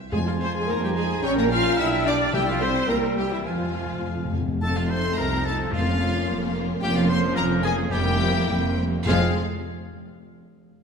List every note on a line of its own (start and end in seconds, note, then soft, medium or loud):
0.00 0.12 E5 medium
0.11 0.62 F2 loud
0.11 0.93 F2 loud
0.11 1.25 F3 medium
0.11 0.25 G#3 loud
0.11 0.18 G#3 loud
0.11 0.66 F4 medium
0.11 0.18 G#4 loud
0.11 0.20 F5 medium
0.11 1.26 G#5 medium
0.11 0.26 G#5 loud
0.11 1.24 C6 medium
0.25 0.31 F3 medium
0.25 0.33 F3 medium
0.25 0.32 F4 loud
0.25 0.42 F5 medium
0.38 0.45 C4 medium
0.38 0.47 C4 medium
0.38 0.55 C5 loud
0.38 0.49 F5 medium
0.44 0.56 C6 loud
0.52 0.67 G#3 medium
0.52 0.69 G#3 medium
0.57 0.70 G#4 loud
0.57 0.70 G#5 medium
0.66 1.18 F2 medium
0.66 0.82 A#3 loud
0.66 0.83 A#4 loud
0.66 0.75 F5 medium
0.70 0.84 A#3 loud
0.70 1.27 D#4 loud
0.70 0.84 A#5 medium
0.80 0.87 G3 medium
0.80 0.89 G4 loud
0.80 0.89 G5 medium
0.84 0.98 G3 loud
0.93 1.06 G#3 loud
0.93 1.04 F5 medium
0.93 1.24 G#5 loud
0.98 1.25 G#3 loud
0.98 1.25 G#4 loud
1.22 1.73 A#1 loud
1.22 1.79 G3 loud
1.22 1.37 C#4 loud
1.22 1.39 C#4 loud
1.22 1.82 C#4 loud
1.22 1.82 G5 loud
1.22 1.33 G5 loud
1.22 1.80 A#5 loud
1.22 1.31 C#6 loud
1.26 1.39 C#5 loud
1.37 1.52 A#3 loud
1.37 1.53 A#3 loud
1.37 1.52 A#4 loud
1.37 1.44 A#5 loud
1.49 1.78 F4 loud
1.49 1.79 F5 loud
1.49 1.60 G5 medium
1.49 1.79 F6 loud
1.53 1.80 F4 loud
1.77 2.28 B1 loud
1.77 2.33 G3 loud
1.77 2.34 D4 loud
1.77 2.06 E4 loud
1.77 2.07 E4 loud
1.77 2.07 E5 loud
1.77 1.86 F5 loud
1.77 2.34 F5 loud
1.77 2.33 G5 loud
1.77 1.88 E6 loud
2.04 2.33 D4 loud
2.04 2.35 D4 loud
2.04 2.34 D5 loud
2.04 2.16 F5 medium
2.04 2.15 D6 loud
2.33 2.83 C2 loud
2.33 2.85 C3 loud
2.33 2.47 G3 loud
2.33 2.87 G3 loud
2.33 2.40 G3 loud
2.33 2.89 E4 loud
2.33 2.39 G4 loud
2.33 2.41 E5 loud
2.33 2.89 E5 loud
2.33 2.87 G5 loud
2.33 2.48 G5 loud
2.47 2.61 F3 loud
2.47 2.62 F3 loud
2.47 2.62 F4 loud
2.47 2.62 F5 loud
2.60 2.73 C4 loud
2.60 2.90 C4 loud
2.60 2.89 C5 loud
2.60 2.69 E5 medium
2.60 2.90 C6 loud
2.87 3.40 C2 loud
2.87 3.45 G3 medium
2.87 3.46 G3 loud
2.87 3.01 A#3 loud
2.87 3.18 A#3 loud
2.87 3.18 A#4 loud
2.87 2.96 E5 medium
2.87 3.46 E5 medium
2.87 3.47 G5 medium
2.87 2.97 A#5 loud
3.16 3.31 G3 loud
3.16 3.32 G3 loud
3.16 3.31 G4 loud
3.16 3.26 E5 medium
3.16 3.32 G5 loud
3.31 3.46 E3 medium
3.31 3.47 E3 medium
3.31 3.46 E4 medium
3.31 3.39 E5 medium
3.45 3.53 F2 soft
3.45 3.98 F2 medium
3.45 4.31 F3 medium
3.45 4.32 F3 medium
3.45 4.33 F3 medium
3.45 4.32 G#3 medium
3.45 4.34 F4 loud
3.45 4.32 F5 medium
3.45 4.33 F5 medium
3.45 4.33 G#5 medium
3.45 3.54 G#5 medium
3.54 3.61 F2 medium
3.62 3.69 F2 soft
3.70 3.77 F2 medium
3.76 3.84 G#5 medium
3.86 3.92 F2 medium
3.93 4.00 F2 medium
4.01 4.08 F2 medium
4.05 4.56 F2 medium
4.05 4.15 F2 medium
4.05 4.14 G#5 medium
4.17 4.24 F2 medium
4.25 4.32 F2 loud
4.33 4.39 F2 loud
4.33 4.43 G#5 medium
4.40 4.47 F2 loud
4.48 4.56 F2 loud
4.61 5.09 F1 loud
4.61 5.41 F2 loud
4.61 5.09 F2 loud
4.61 6.78 F3 medium
4.61 5.69 A3 loud
4.61 4.76 A3 medium
4.61 5.69 C4 medium
4.61 5.69 D#4 medium
4.61 4.69 A4 loud
4.61 4.79 A4 loud
4.61 5.70 A4 medium
4.61 4.67 A5 loud
4.61 4.76 A5 loud
4.76 4.91 C4 medium
4.76 4.92 F4 medium
4.76 4.91 F4 medium
4.76 4.90 F5 loud
4.76 4.92 F5 medium
4.90 5.05 D#4 medium
4.90 5.20 C5 loud
4.90 5.04 C5 loud
4.90 5.18 C6 loud
4.90 5.19 C6 loud
5.05 5.19 C4 medium
5.18 5.64 C2 loud
5.18 5.64 C2 medium
5.18 5.33 A3 medium
5.18 5.46 A#4 loud
5.18 5.31 A#4 loud
5.18 5.47 A#5 loud
5.18 5.46 A#5 loud
5.35 5.47 C4 medium
5.44 5.74 A4 loud
5.44 5.75 A4 loud
5.44 5.73 A5 loud
5.44 5.55 A5 loud
5.49 5.61 D#4 medium
5.61 5.74 C4 medium
5.72 6.19 F1 loud
5.72 6.51 F2 loud
5.72 6.19 F2 loud
5.72 6.80 A#3 medium
5.72 7.87 A#3 medium
5.72 5.87 A#3 medium
5.72 6.80 C#4 medium
5.72 6.55 F4 loud
5.72 7.92 F4 medium
5.72 6.54 F5 loud
5.89 6.02 C#4 medium
6.03 6.15 A#3 medium
6.16 6.29 C#4 medium
6.28 6.73 F1 loud
6.28 6.73 F2 loud
6.28 6.42 A#3 medium
6.42 6.55 C#4 medium
6.54 6.68 A#3 medium
6.67 6.82 C#4 medium
6.80 7.27 F1 loud
6.80 7.27 F2 loud
6.80 7.89 F3 loud
6.80 6.94 A#3 loud
6.80 7.34 A#3 loud
6.80 7.35 C#4 loud
6.80 6.94 G4 loud
6.80 6.98 G4 loud
6.80 6.94 G5 loud
6.80 6.95 G5 loud
6.95 7.09 C#4 medium
6.95 7.11 F4 loud
6.95 7.12 F4 loud
6.95 7.03 F5 medium
6.95 7.10 F5 loud
7.07 7.21 A#3 loud
7.07 7.37 C5 loud
7.07 7.39 C5 loud
7.07 7.35 C6 loud
7.11 7.19 C6 loud
7.22 7.36 C#4 loud
7.35 7.82 F1 loud
7.35 7.82 F2 loud
7.35 7.49 A#3 loud
7.35 7.90 A#3 loud
7.35 7.90 C#4 loud
7.35 7.66 A#4 loud
7.35 7.64 A#4 loud
7.35 7.42 A#5 loud
7.35 7.45 A#5 loud
7.49 7.63 C#4 loud
7.62 7.77 A#3 loud
7.62 7.93 G#4 loud
7.62 7.77 G#4 loud
7.62 7.69 G#5 loud
7.62 7.73 G#5 loud
7.77 7.91 C#4 medium
7.89 8.39 F1 loud
7.89 8.73 F2 loud
7.89 8.39 F2 loud
7.89 8.03 G3 loud
7.89 8.86 G3 loud
7.89 8.84 A#3 loud
7.89 8.76 A#3 loud
7.89 8.78 C4 loud
7.89 8.85 E4 loud
7.89 8.78 G4 loud
7.89 8.76 G5 loud
7.89 8.77 G5 loud
7.93 8.77 G4 loud
8.04 8.19 A#3 medium
8.19 8.34 C4 medium
8.33 8.48 A#3 medium
8.48 8.97 F1 loud
8.48 8.97 F2 loud
8.48 8.63 G3 medium
8.63 8.78 A#3 medium
8.78 8.92 C4 medium
8.94 9.07 A#3 medium
9.05 9.37 F1 loud
9.05 9.32 F2 loud
9.05 9.38 F2 loud
9.05 9.38 F3 loud
9.05 9.30 G#3 loud
9.05 9.38 G#3 loud
9.05 9.29 C4 loud
9.05 9.38 C4 loud
9.05 9.30 F4 loud
9.05 9.38 F4 loud
9.05 9.37 G#4 loud
9.05 9.30 F5 loud
9.05 9.38 F5 loud